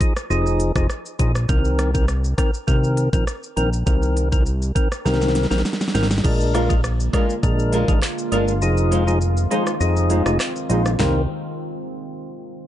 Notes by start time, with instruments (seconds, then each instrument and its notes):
0.00 tonewheel organ F3 D#4 G#4, kick, closed hi-hat, shaker
0.17 cross-stick, shaker
0.30 analog synth bass F1, tonewheel organ F3 D#4 G#4, shaker
0.46 shaker
0.60 closed hi-hat, shaker
0.76 analog synth bass F1, tonewheel organ F3 D#4 G#4, kick, cross-stick, shaker
0.90 cross-stick, shaker
1.06 shaker
1.19 analog synth bass A#1, tonewheel organ F3 D#4 G#4, kick, closed hi-hat, shaker
1.35 cross-stick, shaker
1.49 analog synth bass C2, tonewheel organ D#3 C4 A#4, kick, shaker
1.65 shaker
1.79 cross-stick, closed hi-hat, shaker
1.94 tonewheel organ D#3 C4 A#4, kick, shaker
2.08 cross-stick, shaker
2.24 shaker
2.38 tonewheel organ D#3 C4 A#4, kick, cross-stick, closed hi-hat, shaker
2.54 shaker
2.67 analog synth bass C2, tonewheel organ D#3 C4 A#4, kick, shaker
2.84 shaker
2.97 closed hi-hat, shaker
3.13 analog synth bass A#1, tonewheel organ D#3 C4 A#4, kick, shaker
3.27 cross-stick, shaker
3.43 shaker
3.57 analog synth bass A#1, tonewheel organ D#3 C4 A#4, closed hi-hat, shaker
3.73 shaker
3.86 analog synth bass C2, tonewheel organ D#3 C4 A#4, kick, shaker
4.02 shaker
4.17 closed hi-hat, shaker
4.32 tonewheel organ D#3 C4 A#4, kick, shaker
4.46 shaker
4.62 shaker
4.75 tonewheel organ D#3 C4 A#4, kick, closed hi-hat, shaker
4.92 cross-stick, shaker
5.05 analog synth bass C2, tonewheel organ D#3 C4 A#4, snare, shaker
5.14 snare
5.21 snare, shaker
5.28 snare
5.35 snare, closed hi-hat, shaker
5.43 snare
5.50 analog synth bass A#1, tonewheel organ D#3 C4 A#4, snare, shaker
5.58 snare
5.65 snare, shaker
5.73 snare
5.81 snare, shaker
5.88 snare
5.94 analog synth bass G#1, tonewheel organ D#3 C4 A#4, snare, closed hi-hat, shaker
6.03 snare
6.11 snare, shaker
6.18 snare
6.24 analog synth bass A#1, ambient pad D3 G#3 A#3 F4, tonewheel organ G#3 D4 A#4, kick, crash, shaker
6.40 shaker
6.53 nylon-string guitar G#3 D4 F4 A#4, cross-stick, closed hi-hat, shaker
6.69 tonewheel organ G#3 D4 A#4, kick, shaker
6.84 cross-stick, shaker
7.00 shaker
7.13 nylon-string guitar G#3 D4 F4 A#4, tonewheel organ G#3 D4 A#4, kick, cross-stick, closed hi-hat, shaker
7.30 shaker
7.43 analog synth bass A#1, tonewheel organ G#3 D4 A#4, kick, shaker
7.59 shaker
7.72 nylon-string guitar G#3 D4 F4 A#4, closed hi-hat, shaker
7.88 analog synth bass G#1, tonewheel organ G#3 D4 A#4, kick, shaker
8.02 cross-stick, clap, shaker
8.18 shaker
8.32 analog synth bass G1, nylon-string guitar G#3 D4 F4 A#4, tonewheel organ G#3 D4 A#4, closed hi-hat, shaker
8.48 shaker
8.62 analog synth bass F1, ambient pad D#3 C4, tonewheel organ F3 D#4 G#4, shaker
8.77 shaker
8.91 nylon-string guitar G#3 D#4 F4 C5, closed hi-hat, shaker
9.07 tonewheel organ F3 D#4 G#4, shaker
9.21 shaker
9.37 shaker
9.50 tonewheel organ F3 D#4 G#4, nylon-string guitar G#3 D#4 F4 C5, closed hi-hat, shaker
9.67 cross-stick, shaker
9.80 analog synth bass F1, tonewheel organ F3 D#4 G#4, shaker
9.97 shaker
10.10 nylon-string guitar G#3 D#4 F4 C5, closed hi-hat, shaker
10.26 analog synth bass F1, tonewheel organ F3 D#4 G#4, cross-stick, shaker
10.40 cross-stick, clap, shaker
10.56 shaker
10.69 analog synth bass A#1, tonewheel organ F3 D#4 G#4, nylon-string guitar G#3 D#4 F4 C5, closed hi-hat, shaker
10.86 cross-stick, shaker
10.99 analog synth bass C2, tonewheel organ D#3 C4 A#4, nylon-string guitar A#3 D#4 G4 C5, snare, clap, floor tom